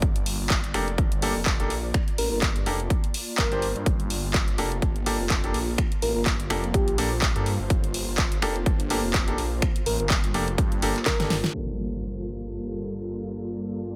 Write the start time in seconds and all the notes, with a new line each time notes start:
Already playing: A#3 F4 D5
0.02 G1, kick, closed hi-hat
0.16 closed hi-hat
0.26 open hi-hat
0.40 G1
0.50 kick, clap, closed hi-hat
0.64 closed hi-hat
0.74 F1 A#3 D4 G4 A4, finger snap, open hi-hat
0.88 closed hi-hat
0.98 G1, kick, closed hi-hat
1.12 closed hi-hat
1.22 A#3 D4 G4 A4, open hi-hat
1.36 F1
1.46 kick, clap, closed hi-hat
1.60 A#3 D4 G4 A4, closed hi-hat
1.70 A#1, open hi-hat
1.94 finger snap, kick, closed hi-hat
2.08 closed hi-hat
2.18 A1 A#4, open hi-hat
2.32 G1 A#4
2.42 kick, clap, closed hi-hat
2.56 closed hi-hat
2.66 F1 A#3 D4 G4 A4, open hi-hat
2.80 closed hi-hat
2.90 kick, closed hi-hat
3.04 closed hi-hat
3.14 open hi-hat
3.38 G1 A#4, kick, clap, closed hi-hat
3.52 A#3 D4 G4 C5, closed hi-hat
3.62 open hi-hat
3.76 G2, closed hi-hat
3.86 G1, kick, closed hi-hat
4.00 closed hi-hat
4.10 open hi-hat
4.24 G1
4.34 kick, clap, closed hi-hat
4.48 closed hi-hat
4.58 F1 A#3 D4 G4 A4, open hi-hat
4.72 closed hi-hat
4.82 G1, kick, closed hi-hat
4.96 closed hi-hat
5.06 A#3 D4 G4 A4, open hi-hat
5.20 F1
5.30 kick, clap, closed hi-hat
5.44 A#3 D4 G4 A4, closed hi-hat
5.54 A#1, open hi-hat
5.68 C5
5.78 finger snap, kick, closed hi-hat
5.92 closed hi-hat
6.02 A1 A#4, open hi-hat
6.16 G1 A#4
6.26 kick, clap, closed hi-hat
6.40 closed hi-hat
6.50 F1 A#3 D4 G4 A4, finger snap, open hi-hat
6.64 closed hi-hat
6.74 A#1 G4, kick, closed hi-hat
6.88 closed hi-hat
6.98 A#1 A#3 D4 G4 A4, open hi-hat
7.22 kick, clap, closed hi-hat
7.36 G2 A#3 D4 G4 A4, closed hi-hat
7.46 open hi-hat
7.60 G1
7.70 G1, kick, closed hi-hat
7.84 closed hi-hat
7.94 open hi-hat
8.08 G1
8.18 kick, clap, closed hi-hat
8.32 closed hi-hat
8.42 F1 A#3 D4 G4 A4, finger snap, open hi-hat
8.56 closed hi-hat
8.66 G1, kick, closed hi-hat
8.80 closed hi-hat
8.90 A#3 D4 G4 A4, open hi-hat
9.04 F1
9.14 kick, clap, closed hi-hat
9.28 A#3 D4 G4 A4, closed hi-hat
9.38 A#1, open hi-hat
9.62 finger snap, kick, closed hi-hat
9.76 closed hi-hat
9.86 A1 A#4, open hi-hat
10.00 G1 A#4, closed hi-hat
10.10 kick, clap, closed hi-hat
10.24 closed hi-hat
10.34 F1 A#3 D4 G4 A4, open hi-hat
10.48 closed hi-hat
10.58 G2, kick, closed hi-hat
10.72 closed hi-hat
10.82 G1 A#3 D4 G4 A4, open hi-hat
10.96 clap, closed hi-hat
11.06 A#4, kick, snare, clap, closed hi-hat
11.20 G1 A#3 D4 G4 A4, snare, closed hi-hat
11.30 snare, open hi-hat
11.44 snare, closed hi-hat
11.54 G2 G3 A#3 D4 G4 A4, impact
12.56 D5